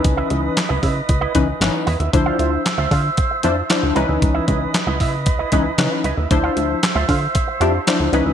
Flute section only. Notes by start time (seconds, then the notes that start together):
Already playing: B4 D#5 D#6
2.14 C5 E5 E6
3.96 B4 D#5 D#6
6.31 C5 E5 E6
8.13 B4 D#5 D#6